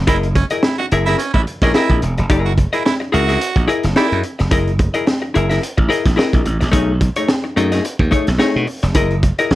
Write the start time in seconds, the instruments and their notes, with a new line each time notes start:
0.07 slap bass F#1, hollow-body jazz guitar E4 G#4 A#4 D#5, baritone saxophone E4, kick, closed hi-hat
0.23 closed hi-hat
0.35 baritone saxophone C#4, muted hollow-body jazz guitar stroke, kick, closed hi-hat
0.50 hollow-body jazz guitar E4 G#4 A#4 D#5, closed hi-hat
0.63 baritone saxophone E4, muted hollow-body jazz guitar stroke, snare
0.78 baritone saxophone F#4, muted hollow-body jazz guitar stroke
0.92 slap bass F#1, hollow-body jazz guitar E4 G#4 A#4 E5, closed hi-hat
1.05 baritone saxophone E4, hollow-body jazz guitar E4 G#4 A#4 E5, snare, closed hi-hat
1.18 baritone saxophone C#4, muted hollow-body jazz guitar stroke, closed hi-hat
1.34 slap bass A1, baritone saxophone E4, muted hollow-body jazz guitar stroke, kick
1.47 closed hi-hat
1.62 slap bass A#1, baritone saxophone C#4, hollow-body jazz guitar E4 G#4 A#4 D#5, kick, snare, closed hi-hat
1.74 baritone saxophone E4, hollow-body jazz guitar E4 G#4 A#4 D#5, snare
1.90 slap bass A#1, kick
2.02 slap bass E1, muted hollow-body jazz guitar stroke, closed hi-hat
2.18 slap bass F1, muted hollow-body jazz guitar stroke, closed hi-hat
2.30 slap bass F#1, hollow-body jazz guitar E4 G#4 A#4 D#5, kick, closed hi-hat
2.45 baritone saxophone F#4, closed hi-hat
2.58 muted hollow-body jazz guitar stroke, kick, closed hi-hat
2.73 baritone saxophone E4, hollow-body jazz guitar E4 G#4 A#4 D#5, closed hi-hat
2.85 baritone saxophone E4, muted hollow-body jazz guitar stroke, snare
3.00 muted hollow-body jazz guitar stroke
3.12 slap bass C#2, hollow-body jazz guitar E4 G#4 A#4 E5, baritone saxophone F#4, closed hi-hat
3.27 hollow-body jazz guitar E4 G#4 A#4 E5, snare, closed hi-hat
3.40 muted hollow-body jazz guitar stroke, closed hi-hat
3.56 slap bass A#1, muted hollow-body jazz guitar stroke, kick, closed hi-hat
3.68 hollow-body jazz guitar E4 G#4 A#4 D#5, closed hi-hat
3.83 slap bass F#1, muted hollow-body jazz guitar stroke, snare, closed hi-hat
3.96 hollow-body jazz guitar D#4 G4 A4 D5, baritone saxophone E4, snare
4.07 hollow-body jazz guitar E4 G#4 A#4 D#5
4.12 slap bass F#2, closed hi-hat
4.23 muted hollow-body jazz guitar stroke, closed hi-hat
4.39 slap bass F1, muted hollow-body jazz guitar stroke, snare, closed hi-hat
4.51 slap bass F#1, hollow-body jazz guitar E4 G#4 A#4 D#5, kick, closed hi-hat
4.67 closed hi-hat
4.79 muted hollow-body jazz guitar stroke, kick, closed hi-hat
4.94 hollow-body jazz guitar E4 G#4 A#4 D#5, closed hi-hat
5.06 muted hollow-body jazz guitar stroke, snare
5.22 muted hollow-body jazz guitar stroke
5.34 slap bass F#1, hollow-body jazz guitar E4 G#4 A#4 E5, closed hi-hat
5.49 hollow-body jazz guitar E4 G#4 A#4 E5, snare, closed hi-hat
5.62 muted hollow-body jazz guitar stroke, closed hi-hat
5.77 slap bass A1, muted hollow-body jazz guitar stroke, kick
5.89 hollow-body jazz guitar E4 G#4 A#4 D#5, closed hi-hat
6.05 slap bass A#1, muted hollow-body jazz guitar stroke, kick, snare, closed hi-hat
6.16 hollow-body jazz guitar E4 G#4 A#4 D#5, snare
6.33 slap bass A#1, kick, closed hi-hat
6.45 slap bass A1, muted hollow-body jazz guitar stroke, closed hi-hat
6.61 slap bass A#1, muted hollow-body jazz guitar stroke, snare, closed hi-hat
6.72 slap bass B1, hollow-body jazz guitar A3 D#4 G#4 C#5, kick, closed hi-hat
7.01 muted hollow-body jazz guitar stroke, kick, closed hi-hat
7.16 hollow-body jazz guitar A3 D#4 G#4 C#5, closed hi-hat
7.29 muted hollow-body jazz guitar stroke, snare
7.44 muted hollow-body jazz guitar stroke
7.56 slap bass F#2, hollow-body jazz guitar A3 D#4 G#4 D#5, closed hi-hat
7.72 hollow-body jazz guitar A3 D#4 G#4 D#5, snare, closed hi-hat
7.85 muted hollow-body jazz guitar stroke, closed hi-hat
7.99 slap bass D#2, muted hollow-body jazz guitar stroke, kick
8.11 hollow-body jazz guitar A3 D#4 G#4 C#5, kick, closed hi-hat
8.27 slap bass B1, muted hollow-body jazz guitar stroke, snare, closed hi-hat
8.38 hollow-body jazz guitar A3 D#4 G#4 C#5, snare
8.56 slap bass B2
8.67 muted hollow-body jazz guitar stroke, open hi-hat
8.83 slap bass F1, muted hollow-body jazz guitar stroke, snare, closed hi-hat
8.95 slap bass F#1, hollow-body jazz guitar E4 G#4 A#4 D#5, kick, closed hi-hat
9.11 closed hi-hat
9.23 muted hollow-body jazz guitar stroke, kick, closed hi-hat
9.39 hollow-body jazz guitar E4 G#4 A#4 D#5, closed hi-hat
9.51 slap bass A#1, muted hollow-body jazz guitar stroke, snare